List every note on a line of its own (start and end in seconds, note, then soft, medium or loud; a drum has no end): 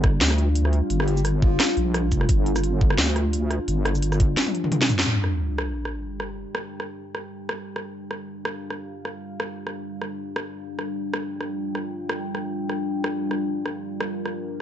0.00 0.20 G1 loud
0.00 5.02 G3 medium
0.00 5.02 D4 medium
0.00 5.04 F4 medium
0.00 kick loud
0.00 cross-stick medium
0.21 0.81 D2 medium
0.21 snare loud
0.21 closed hi-hat medium
0.31 cross-stick medium
0.38 closed hi-hat soft
0.56 closed hi-hat medium
0.65 cross-stick medium
0.73 closed hi-hat soft
0.90 1.59 G1 loud
0.90 closed hi-hat medium
1.00 1.20 G4 medium
1.00 cross-stick medium
1.08 closed hi-hat soft
1.17 shaker medium
1.25 cross-stick medium
1.25 closed hi-hat medium
1.42 1.77 F4 loud
1.42 kick loud
1.60 cross-stick medium
1.60 snare loud
1.60 closed hi-hat medium
1.77 2.11 A#1 loud
1.77 closed hi-hat soft
1.94 cross-stick medium
1.94 closed hi-hat medium
2.12 2.28 F1 loud
2.12 kick medium
2.12 closed hi-hat soft
2.12 shaker medium
2.21 cross-stick medium
2.29 2.97 G1 loud
2.29 kick loud
2.29 closed hi-hat medium
2.46 closed hi-hat soft
2.56 cross-stick medium
2.56 shaker medium
2.64 closed hi-hat medium
2.81 kick loud
2.90 cross-stick medium
2.98 3.59 D2 loud
2.98 snare loud
2.98 closed hi-hat medium
3.16 cross-stick medium
3.16 closed hi-hat soft
3.33 closed hi-hat medium
3.51 cross-stick medium
3.51 closed hi-hat soft
3.68 4.36 G1 loud
3.68 closed hi-hat medium
3.85 cross-stick medium
3.85 closed hi-hat soft
3.95 shaker medium
4.03 closed hi-hat medium
4.12 cross-stick medium
4.12 shaker soft
4.20 kick loud
4.20 closed hi-hat soft
4.37 snare medium
4.37 closed hi-hat medium
4.47 high tom medium
4.55 closed hi-hat soft
4.64 mid tom medium
4.72 closed hi-hat medium
4.72 mid tom medium
4.82 snare medium
4.89 closed hi-hat soft
4.89 mid tom loud
4.89 shaker medium
4.99 snare medium
5.06 14.62 G3 medium
5.06 14.62 D4 medium
5.06 10.57 G4 medium
5.06 7.83 G5 medium
5.06 sub drop medium
5.24 cross-stick medium
5.58 cross-stick medium
5.85 cross-stick medium
6.20 cross-stick medium
6.55 cross-stick medium
6.80 cross-stick medium
7.15 cross-stick medium
7.49 cross-stick medium
7.76 cross-stick medium
7.83 10.60 F5 medium
8.11 cross-stick soft
8.45 cross-stick medium
8.70 cross-stick soft
9.05 cross-stick soft
9.40 cross-stick medium
9.67 cross-stick soft
10.02 cross-stick soft
10.36 cross-stick medium
10.61 14.62 F4 medium
10.61 13.38 G5 medium
10.79 cross-stick soft
11.14 cross-stick medium
11.41 cross-stick soft
11.75 cross-stick medium
12.09 cross-stick medium
12.35 cross-stick soft
12.70 cross-stick soft
13.04 cross-stick medium
13.31 cross-stick soft
13.39 14.62 A#4 medium
13.66 cross-stick medium
14.01 cross-stick medium
14.26 cross-stick medium